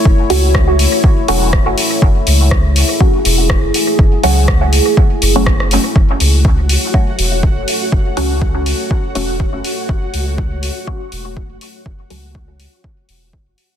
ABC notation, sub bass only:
X:1
M:4/4
L:1/16
Q:"Swing 16ths" 1/4=122
K:F#m
V:1 name="Sub bass" clef=bass
F,,, z C,,4- C,, z3 E,,,3 F,,, z2 | F,,, z C,,4- C,, z3 E,,,3 F,,, z2 | F,,, z C,,4- C,, z3 F,,,4- F,,, z | F,,, z C,,4- C,, z3 E,,,3 F,,, z2 |
F,,, z C,,4- C,, z3 E,,,3 F,,, z2 | F,,, z C,,4- C,, z3 E,,,3 F,,, z2 | F,,, z C,,4- C,, z3 E,,,3 F,,, z2 |]